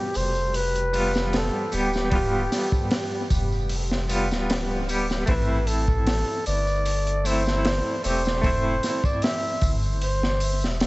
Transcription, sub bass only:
0.16 F1
1.73 D1
3.31 F1
4.31 D1
5.29 A1
6.47 G1
8.05 E1
9.62 G1
10.62 E1

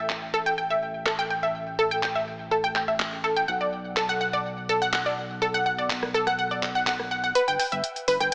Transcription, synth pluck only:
0.34 A4
0.46 G5
0.58 G5
0.70 E5
1.06 A4
1.19 G5
1.30 G5
1.43 E5
1.79 A4
1.91 G5
2.03 G5
2.16 E5
2.51 A4
2.64 G5
2.76 G5
2.88 E5
3.24 A4
3.37 G5
3.48 F#5
3.61 D5
3.97 A4
4.09 F#5
4.21 F#5
4.33 D5
4.69 A4
4.82 F#5
4.93 F#5
5.06 D5
5.42 A4
5.54 F#5
5.66 F#5
5.78 D5
6.14 A4
6.27 F#5
6.39 F#5
6.51 D5
6.75 F#5
6.87 F#5
7.11 F#5
7.24 F#5
7.35 B4
7.48 G5
7.60 G5
7.72 E5
8.08 B4
8.20 G5

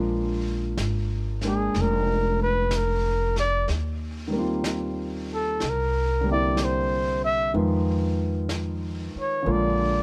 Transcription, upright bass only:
Already playing: A#1
0.77 G#1
1.74 F1
3.69 D#2
5.63 C2
7.54 F2
9.16 muted upright bass stroke
9.46 A#1

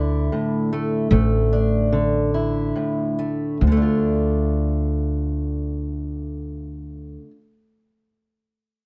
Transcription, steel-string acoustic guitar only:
Already playing: D2 D3 A3 D4 E4
0.32 A2
0.73 A3
1.11 D2 A3
1.53 D4
1.92 D3
2.34 E4
2.76 A2
3.19 A3
3.62 D2
3.67 D3
3.72 A3
3.77 D4
3.82 F4

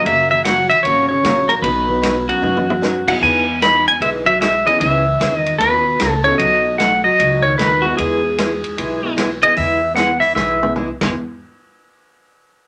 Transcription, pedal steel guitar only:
0.06 E5
0.31 E5
0.45 F#5
0.69 E5
0.83 C#5
1.09 C#5
1.49 A#4
1.62 B4
2.29 F#4
3.08 F#5
3.23 G#5
3.63 B5
3.88 G#5
4.02 E5
4.26 E5
4.41 E5
4.67 D#5
4.80 E5
5.36 D#5
5.59 B4
6.11 A4
6.24 C#5
6.38 D#5
6.78 F#5
7.04 D#5
7.42 C#5
7.58 B4
7.82 F#4
7.97 G#4
9.43 D#5
9.57 E5
9.96 F#5
10.20 E5
10.35 E5

